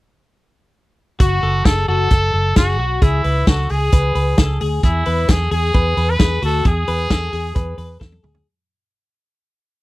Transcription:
1.20 F#1 F#4, kick, closed hi-hat
1.43 F#1 A4
1.65 F#1 G#4 A4, kick, snare, closed hi-hat
1.88 F#1 F#4 A4
2.10 F#1 A4, kick, closed hi-hat
2.33 F#1 A4
2.56 F#1 F#4 G#4, kick, snare, closed hi-hat
2.79 B1 F#4
3.02 C#2 E4 G#4, kick, closed hi-hat
3.24 C#2 B4, open hi-hat
3.47 C#2 F#4 A4, kick, snare, closed hi-hat
3.69 C#2 G#4, open hi-hat
3.92 C#2 B4, kick, closed hi-hat
4.15 C#2 B4, open hi-hat
4.38 C#2 A4, kick, snare, closed hi-hat
4.61 D2 G#4, open hi-hat
4.83 E2 E4 G#4, kick, closed hi-hat
5.06 E2 B4, open hi-hat
5.28 E2 G#4 A4, kick, snare, closed hi-hat
5.51 E2 G#4, open hi-hat
5.74 E2 B4, kick, closed hi-hat
5.97 E2 B4, open hi-hat
6.10 B4
6.19 E2 G#4, kick, snare, closed hi-hat
6.42 D2 F#4 A4, open hi-hat
6.65 E2 G#4, kick, closed hi-hat
6.87 E2 B4, open hi-hat
7.10 E2 A4, kick, snare, closed hi-hat
7.33 E2 G#4, open hi-hat
7.55 E2 B4, kick, closed hi-hat
7.78 E2 B4, open hi-hat
8.00 E2 A4, kick, snare
8.12 high tom
8.23 D2 G#4, mid tom
8.34 floor tom

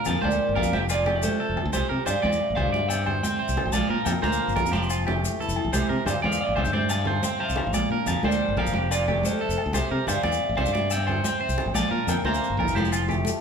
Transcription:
Already playing: A#2 D4 A#4
0.05 F2 A#3 F5 A5, low conga, low agogo, maracas
0.22 D2 A#4 C5 D5 G5, high conga, low agogo
0.31 maracas
0.39 F3
0.49 G1
0.55 A#1 A#4 D5 F5, low conga, low agogo
0.63 F2, maracas
0.72 F1 F3 G4 C5 E5, high conga
0.89 F4 A#4 D5, low agogo, maracas
1.06 A3 G4, low conga, low agogo
1.16 D5
1.23 A4 C5, muted nylon-string guitar stroke, high conga, maracas
1.39 C3 A4, low conga
1.49 F1
1.57 low conga, low agogo
1.66 D2
1.72 C2 G4 C5, muted nylon-string guitar stroke, high conga, low agogo, maracas
1.89 C3 C4 A#4
2.06 G2 G3 C5 D5 F5, low conga, low agogo, maracas
2.22 E2 C5 D5, high conga, low agogo
2.32 maracas
2.41 C3
2.50 A1
2.55 C2 C5 D5 F5, low conga, low agogo
2.67 G2
2.72 C3 D5, high conga
2.88 C4 E5 G5, low agogo, maracas
3.06 G3 C5, low conga, low agogo
3.23 C5 G5, high conga, maracas
3.39 C3 C5, low conga
3.48 C2, maracas
3.57 low conga, low agogo
3.65 A1
3.72 A#1 A#2 D5 F5 A5, high conga, low agogo, maracas
3.89 A#2 D4 A#4, low conga
4.05 F2 A#3 E5 G5, low conga, low agogo, maracas
4.22 D2 A#4 C5 F5 A#5, high conga, low agogo, maracas
4.32 maracas
4.38 F3
4.48 G1, low conga, maracas
4.56 A#1 A#4, low conga, low agogo, maracas
4.66 F2, maracas
4.72 F1 F3 G4 A5 C6, high conga, low conga, maracas
4.83 maracas
4.90 C4 F4, low conga, low agogo, maracas
5.00 low conga
5.06 A3 G4, low conga, low agogo
5.23 F3, high conga, maracas
5.39 E3 A4, low conga, maracas
5.48 F1, maracas
5.55 D3, low conga, low agogo
5.65 A#1
5.73 C2 C3 G4 C5, high conga, low agogo, maracas
5.89 C3 C4 A#4
6.06 G2 G3 C5 D5 F5, low conga, low agogo, maracas
6.22 E2 C5 D5 F5, high conga, low agogo
6.32 maracas
6.41 C3 D5 F5
6.49 A1
6.56 C2 C5 E5 G5, low conga, low agogo
6.65 G2, maracas
6.73 C3 C5 D5 G5, high conga
6.89 C4 F5 A5, low agogo, maracas
7.05 G3 C5, low conga, low agogo
7.23 C5 G5, high conga, maracas
7.39 C3 C5 F5 A5, low conga
7.49 C2, maracas
7.56 F5 A#5, low conga, low agogo
7.67 A1
7.73 A#1 A#2 D5, high conga, low agogo, maracas
7.90 A#2 D4 A#4
8.06 F2 F5 A5, low conga, low agogo, maracas
8.23 D2 A#4 C5 D5 G5, high conga, low agogo
8.32 maracas
8.41 F3
8.48 G1
8.57 A#1 A#4 C5 F5, low conga, low agogo
8.67 G1, maracas
8.72 F1 G4, muted nylon-string guitar stroke, high conga
8.91 C4 F4 A#4 D5, low agogo, maracas
9.07 A3 G4, low conga, low agogo
9.23 A4 C5, high conga, maracas
9.40 C3 A4, low conga
9.49 F1, maracas
9.58 low agogo
9.66 D2
9.73 C2 C3 G4 C5, high conga, low agogo, maracas
9.91 C3 C4 A#4
10.07 G2 G3 C5 D5 F5, low conga, low agogo, maracas
10.23 E2 C5 D5, high conga, low agogo
10.32 maracas
10.40 C3
10.49 A1
10.57 C2 C5 D5 F5, low conga, low agogo
10.66 G2, maracas
10.74 C3 D5, high conga
10.91 C4 E5 G5, low agogo, maracas
11.07 C5, muted nylon-string guitar stroke, low conga, low agogo
11.24 C5 G5, high conga, maracas
11.41 C3 C5, low conga
11.49 C2, maracas
11.58 low conga, low agogo
11.66 A1
11.74 A#1 A#2 D5 F5 A5, high conga, low agogo, maracas
11.91 A#2 D4 A#4, low conga
12.07 F2 A#3 E5 G5, low conga, low agogo, maracas
12.18 low conga
12.24 D2 C3 C5 F5 A#5, high conga, low agogo
12.34 maracas
12.41 D3, maracas
12.50 G1, low conga
12.57 A#1 E3 A#4, low conga, low agogo
12.65 G1, maracas
12.69 F1, low conga
12.75 F3 G4 A5 C6, high conga, low conga, maracas
12.85 low conga, maracas
12.91 C4 F4, low agogo, maracas
13.01 low conga
13.07 A3 G4, low conga, low agogo, maracas
13.17 low conga
13.25 A4, high conga, maracas
13.33 low conga

